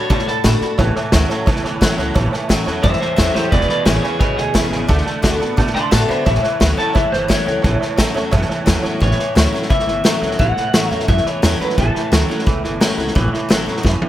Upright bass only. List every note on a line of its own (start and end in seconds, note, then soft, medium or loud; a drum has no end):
0.10 0.23 B2 loud
0.28 muted upright bass stroke medium
0.45 0.57 A2 medium
0.61 muted upright bass stroke medium
0.79 0.91 A1 loud
0.96 muted upright bass stroke medium
1.13 1.25 D2 loud
1.31 muted upright bass stroke medium
1.47 1.60 C#2 medium
1.64 1.77 G1 medium
1.82 1.94 A1 medium
1.98 2.11 C#2 medium
2.16 2.28 A1 loud
2.50 2.62 A1 medium
2.67 2.79 E2 medium
2.84 2.97 F#2 loud
3.00 muted upright bass stroke medium
3.18 3.31 E2 medium
3.35 muted upright bass stroke medium
3.53 3.65 E1 loud
3.70 muted upright bass stroke medium
3.86 3.99 A1 medium
4.21 4.33 G#1 loud
4.37 4.50 D2 medium
4.55 4.68 E1 loud
4.71 4.84 G#1 loud
4.89 5.02 D2 loud
5.23 5.36 D2 medium
5.40 5.53 A2 medium
5.58 5.71 B2 loud
5.75 muted upright bass stroke medium
5.92 6.05 A2 loud
6.10 muted upright bass stroke medium
6.27 6.39 A1 loud
6.43 muted upright bass stroke medium
6.61 6.74 D2 medium
6.96 7.08 C#2 medium
7.12 7.25 G1 medium
7.47 7.60 C#2 loud
7.64 7.77 A1 loud
7.81 muted upright bass stroke medium
7.99 8.11 A1 medium
8.15 8.28 E2 medium
8.33 8.46 F#2 loud
8.50 muted upright bass stroke medium
8.67 8.80 E2 medium
8.85 muted upright bass stroke medium
9.01 9.14 A1 loud
9.19 muted upright bass stroke medium
9.36 9.49 D2 medium
9.70 9.83 C#2 medium
9.87 10.00 G1 medium
10.04 10.17 A1 medium
10.22 10.35 C#2 medium
10.40 10.52 A1 loud
10.73 10.86 A1 medium
10.90 11.04 E2 medium
11.09 11.21 F#2 medium
11.25 muted upright bass stroke medium
11.43 11.56 E2 loud
11.60 muted upright bass stroke medium
11.78 11.90 A1 loud
11.95 muted upright bass stroke medium
12.12 12.25 D2 loud
12.29 muted upright bass stroke medium
12.47 12.60 C#2 medium
12.63 12.76 G1 medium
12.81 12.93 A1 loud
12.98 13.11 C#2 medium
13.16 13.28 A1 loud
13.50 13.62 A1 medium
13.67 13.80 E2 medium
13.85 13.97 F#2 medium
14.02 muted upright bass stroke medium